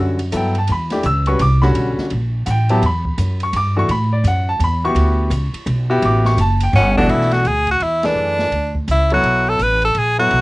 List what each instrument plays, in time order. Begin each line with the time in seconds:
Already playing: upright bass F#2
0.00 grand piano D3 G3 C#4 F#4
0.19 ride
0.32 upright bass G2, grand piano F#3 B3 E4 A4, hi-hat pedal, ride
0.36 grand piano G5
0.55 grand piano A5, ride
0.67 upright bass E2, ride
0.72 grand piano B5
0.90 grand piano E3 A3 D4 G4, snare, ride
1.03 upright bass C#2, grand piano E6, hi-hat pedal, ride
1.26 grand piano G3 C#4 F#4 B4 C#6, ride
1.39 upright bass C2, grand piano D6, ride
1.62 grand piano D3 G3 C#4 F#4 B5, snare
1.75 upright bass B1, ride
1.98 muted upright bass stroke, snare
2.10 upright bass A#1, ride
2.46 upright bass A1, grand piano F#5, hi-hat pedal, ride
2.51 grand piano G5
2.69 grand piano F#3 B3 E4 G4 A5, ride
2.82 upright bass E2, grand piano B5, ride
3.05 kick
3.18 upright bass F#2, hi-hat pedal, ride
3.40 grand piano C#6, ride
3.53 upright bass G2, grand piano D6, ride
3.77 grand piano E3 A3 D4 F#4 C#6
3.89 upright bass A2, grand piano B5, ride
4.13 grand piano D5
4.24 upright bass F#2, grand piano F#5, hi-hat pedal, ride
4.49 grand piano A5
4.60 upright bass E2, ride
4.64 grand piano B5
4.84 grand piano B3 E4 F#4 G4 C#6
4.95 upright bass D2, ride
5.30 upright bass C#2, hi-hat pedal, ride
5.53 muted upright bass stroke, ride
5.66 upright bass B1, ride
5.90 grand piano B3 E4 F#4 G4
6.02 upright bass A1, grand piano D6, ride
6.25 grand piano C#6, snare
6.37 upright bass F#1, grand piano A5, hi-hat pedal, ride
6.60 grand piano G5, ride
6.73 upright bass G1, tenor saxophone C#4, grand piano F#5, snare
6.96 grand piano B2 E3 A3 D4 F#4, tenor saxophone D4, kick
7.09 upright bass B1, tenor saxophone E4, ride
7.21 snare
7.31 tenor saxophone F#4, snare, ride
7.45 upright bass D2, tenor saxophone G#4, hi-hat pedal, ride
7.67 kick, ride
7.71 tenor saxophone F#4
7.80 upright bass E2, tenor saxophone E4, ride
8.03 grand piano E3 A3 D4 G#4 B4, tenor saxophone D4, snare, ride
8.15 upright bass F#2
8.39 snare
8.51 upright bass D2, ride
8.75 kick
8.88 upright bass C#2, tenor saxophone E4, hi-hat pedal, ride
9.10 grand piano F#3 B3 E4 A4 C#5, tenor saxophone F#4, ride
9.23 upright bass B1, ride
9.49 tenor saxophone A4
9.59 upright bass A1, tenor saxophone B4, hi-hat pedal, ride
9.82 tenor saxophone A4, ride
9.95 upright bass A#1, tenor saxophone G#4, ride
10.19 grand piano F#3 B3 E4 A4 C#5, tenor saxophone F#4
10.31 upright bass B1, ride